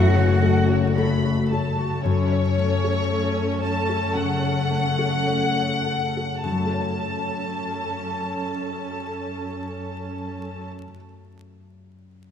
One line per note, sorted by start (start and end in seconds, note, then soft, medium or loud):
0.00 1.84 F#1 medium
0.00 0.41 F#2 soft
0.00 1.48 F#2 medium
0.00 2.03 F#2 medium
0.00 0.14 F#3 soft
0.00 0.41 A3 soft
0.00 1.67 A3 medium
0.00 1.71 C#4 medium
0.00 0.98 F#4 medium
0.00 0.14 A4 soft
0.00 0.68 A4 soft
0.00 0.15 F#5 soft
0.00 0.93 F#5 soft
0.00 0.96 F#5 medium
0.15 2.09 C#3 soft
0.15 0.43 A3 soft
0.15 0.43 F#4 soft
0.15 0.43 C#5 soft
0.42 0.70 F#3 soft
0.42 0.93 A3 soft
0.42 2.56 A3 soft
0.42 0.93 A4 soft
0.42 0.70 A4 soft
0.42 0.93 C#5 soft
0.42 0.70 F#5 soft
0.69 0.97 A3 soft
0.69 0.97 F#4 soft
0.69 1.22 A4 soft
0.69 0.97 C#5 soft
0.96 1.22 F#3 soft
0.96 1.48 A3 soft
0.96 1.22 A4 soft
0.96 1.48 A4 soft
0.96 3.09 C#5 soft
0.96 1.49 C#5 soft
0.96 1.47 B5 soft
1.23 1.52 A3 soft
1.23 1.52 F#4 soft
1.23 3.61 A4 soft
1.51 1.79 F#3 soft
1.51 2.02 A3 soft
1.51 1.79 A4 soft
1.51 2.02 A4 soft
1.51 2.03 C#5 soft
1.51 5.41 A5 soft
1.51 2.06 A5 soft
1.78 2.05 A3 soft
1.78 2.06 F#4 soft
1.78 5.68 C#6 soft
2.04 5.94 F#2 soft
2.04 4.12 F#2 soft
2.04 6.16 F#2 soft
2.04 6.16 C#4 soft
2.04 6.16 A4 soft
2.04 3.59 C#5 medium
2.32 2.74 C#5 soft
2.58 4.69 A3 soft
2.58 3.01 A3 soft
2.84 3.26 A4 soft
3.10 3.53 A3 soft
3.10 5.25 C#5 soft
3.37 3.78 C#5 soft
3.62 4.05 A3 soft
3.62 5.83 A4 soft
3.62 4.16 A5 medium
3.89 4.32 A4 soft
4.15 4.59 C#3 soft
4.15 6.48 C#3 soft
4.15 6.44 F#5 medium
4.43 4.87 C#5 soft
4.70 6.57 A3 soft
4.70 5.15 A3 soft
4.99 5.44 A4 soft
5.27 5.74 A3 soft
5.27 6.70 C#5 soft
5.57 6.04 C#5 soft
5.85 6.33 A3 soft
5.85 6.63 A4 soft
6.17 6.45 A4 soft
6.43 10.66 F#2 soft
6.43 10.67 F#2 soft
6.43 10.68 F#2 soft
6.43 10.66 C#4 soft
6.43 10.65 A4 soft
6.43 10.66 A5 soft
6.50 10.73 F#3 soft
6.50 10.75 F#3 soft
6.58 10.81 A3 soft
6.58 10.82 A3 soft
6.64 10.87 A4 soft
6.64 10.89 A4 soft
6.72 10.94 C#5 soft
6.72 10.96 C#5 soft
6.78 11.01 A5 soft
6.78 11.03 A5 soft